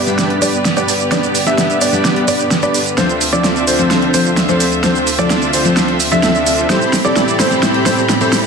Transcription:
Already playing: string section G2 D3 B3 G4 D5, supersaw synth B3 D4 G4 B4 D5, grand piano D5
0.06 steel-string acoustic guitar G3 B3 D4 E5, closed hi-hat, shaker
0.19 snare, closed hi-hat, shaker
0.30 closed hi-hat
0.41 steel-string acoustic guitar G3 B3 D4 B4, supersaw synth B3 D4 G4 B4 D5, grand piano D5, open hi-hat, shaker
0.54 shaker
0.65 snare, closed hi-hat, shaker
0.76 steel-string acoustic guitar G3 B3 D4 B4, supersaw synth B3 D4 G4 B4 D5, grand piano D5, closed hi-hat, shaker
0.88 open hi-hat, shaker
1.00 closed hi-hat, shaker
1.11 steel-string acoustic guitar G3 B3 D4 B4, supersaw synth B3 D4 G4 B4 D5, grand piano D5, snare, closed hi-hat, shaker
1.23 closed hi-hat, shaker
1.35 open hi-hat, shaker
1.46 steel-string acoustic guitar G3 B3 D4 B4, supersaw synth B3 D4 G4 B4 E5, grand piano E5, closed hi-hat, shaker
1.58 snare, closed hi-hat, shaker
1.70 closed hi-hat, shaker
1.81 supersaw synth B3 D4 G4 B4 D5, grand piano D5, open hi-hat, shaker
1.92 steel-string acoustic guitar G3 B3 D4 E5, closed hi-hat, shaker
2.05 snare, closed hi-hat, shaker
2.16 closed hi-hat
2.27 steel-string acoustic guitar G3 B3 D4 B4, supersaw synth B3 D4 G4 B4 D5, grand piano D5, open hi-hat, shaker
2.39 closed hi-hat, shaker
2.51 snare, closed hi-hat, shaker
2.62 steel-string acoustic guitar G3 B3 D4 B4, supersaw synth B3 D4 G4 B4 D5, grand piano D5, closed hi-hat, shaker
2.74 open hi-hat, shaker
2.86 closed hi-hat, shaker
2.97 string section D2 C4 F4 E5, steel-string acoustic guitar F3 C4 D4 A4, supersaw synth C4 D4 F4 A4 C5, grand piano C5, snare, closed hi-hat, shaker
3.09 closed hi-hat, shaker
3.21 open hi-hat, shaker
3.32 steel-string acoustic guitar F3 C4 D4 A4, supersaw synth C4 D4 F4 A4 D5, grand piano D5, shaker
3.44 snare, closed hi-hat, shaker
3.56 closed hi-hat, shaker
3.67 supersaw synth C4 D4 F4 A4 C5, grand piano C5, open hi-hat, shaker
3.78 steel-string acoustic guitar F3 C4 D4 C5, closed hi-hat, shaker
3.91 snare, closed hi-hat, shaker
4.02 closed hi-hat
4.13 steel-string acoustic guitar F3 C4 D4 A4, supersaw synth C4 D4 F4 A4 C5, grand piano C5, open hi-hat, shaker
4.25 closed hi-hat, shaker
4.37 snare, closed hi-hat, shaker
4.48 steel-string acoustic guitar F3 C4 D4 A4, supersaw synth C4 D4 F4 A4 C5, grand piano C5, closed hi-hat, shaker
4.60 open hi-hat, shaker
4.72 closed hi-hat, shaker
4.83 steel-string acoustic guitar F3 C4 D4 A4, supersaw synth C4 D4 F4 A4 C5, grand piano C5, snare, closed hi-hat, shaker
4.95 closed hi-hat, shaker
5.07 open hi-hat, shaker
5.18 steel-string acoustic guitar F3 C4 D4 A4, supersaw synth C4 D4 F4 A4 D5, grand piano D5, closed hi-hat, shaker
5.30 snare, closed hi-hat, shaker
5.42 closed hi-hat, shaker
5.53 supersaw synth C4 D4 F4 A4 C5, grand piano C5, open hi-hat, shaker
5.64 steel-string acoustic guitar F3 C4 D4 C5, closed hi-hat, shaker
5.77 snare, closed hi-hat, shaker
5.88 closed hi-hat
6.00 open hi-hat, shaker
6.11 steel-string acoustic guitar F3 C4 D4 G4, supersaw synth C4 D4 F4 A4 E5, grand piano E5, closed hi-hat, shaker
6.23 steel-string acoustic guitar F3 C4 D4 A4, snare, closed hi-hat, shaker
6.35 supersaw synth C4 D4 F4 A4 E5, grand piano E5, closed hi-hat, shaker
6.46 open hi-hat, shaker
6.58 closed hi-hat, shaker
6.70 string section A2 E3 G4 B5, steel-string acoustic guitar G3 C4 E4 A4, supersaw synth C4 E4 G4 A4 C5, grand piano C5, snare, closed hi-hat, riser, shaker
6.81 closed hi-hat, shaker
6.93 snare, open hi-hat, shaker
7.04 steel-string acoustic guitar G3 C4 E4 A4, supersaw synth C4 E4 G4 A4 D5, grand piano D5, closed hi-hat, shaker
7.16 snare, closed hi-hat, shaker
7.28 closed hi-hat, shaker
7.39 supersaw synth C4 E4 G4 A4 C5, grand piano C5, snare, open hi-hat, shaker
7.51 steel-string acoustic guitar G3 C4 E4 C5, closed hi-hat, shaker
7.63 snare, closed hi-hat, shaker
7.74 closed hi-hat
7.85 steel-string acoustic guitar G3 C4 E4 A4, supersaw synth C4 E4 G4 A4 C5, grand piano C5, snare, open hi-hat, shaker
7.98 closed hi-hat, shaker
8.09 snare, closed hi-hat, shaker
8.21 steel-string acoustic guitar G3 C4 E4 A4, supersaw synth C4 E4 G4 A4 C5, grand piano C5, closed hi-hat, shaker
8.33 snare, open hi-hat, shaker

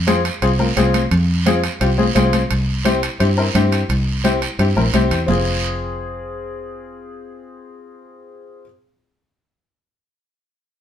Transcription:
Already playing: fingered electric bass F2
0.07 upright piano C4 F4 G#4, high conga, high timbale, short guiro
0.25 high timbale, short guiro
0.42 fingered electric bass C2, upright piano C4 F4 G#4, high conga, high timbale, long guiro
0.59 upright piano C4 F4 A#4, high conga
0.77 fingered electric bass C2, upright piano C4 F4 G#4, high conga, high timbale, low timbale, short guiro
0.94 high conga, high timbale, short guiro
1.11 fingered electric bass F2, high timbale, long guiro
1.46 upright piano C4 F4 G#4, high conga, high timbale, short guiro
1.64 high timbale, short guiro
1.81 fingered electric bass C2, upright piano C4 F4 G4, high conga, high timbale, long guiro
1.98 upright piano C4 F4 G#4, high conga
2.15 fingered electric bass C2, upright piano C4 F4 G#4, high conga, high timbale, low timbale, short guiro
2.33 high conga, high timbale, short guiro
2.51 fingered electric bass C2, high conga, high timbale, long guiro
2.85 upright piano C4 E4 G4, high conga, high timbale, short guiro
3.03 high timbale, short guiro
3.20 fingered electric bass G2, upright piano C4 E4 G4, high conga, high timbale, long guiro
3.37 upright piano C4 E4 A#4
3.54 fingered electric bass G2, upright piano C4 E4 G4, high conga, high timbale, short guiro
3.72 high timbale, short guiro
3.89 fingered electric bass C2, high conga, high timbale, long guiro
4.24 upright piano C4 E4 G4, high conga, high timbale, short guiro
4.42 high timbale, short guiro
4.59 fingered electric bass G2, upright piano C4 E4 G4, high conga, high timbale, long guiro
4.76 fingered electric bass A#1, upright piano C4 E4 A#4, high conga
4.93 fingered electric bass C2, upright piano C4 E4 G4, high conga, high timbale, short guiro
5.11 fingered electric bass E2, high timbale, short guiro
5.26 fingered electric bass F1, upright piano C4 F4 G#4, low conga, low timbale, long guiro

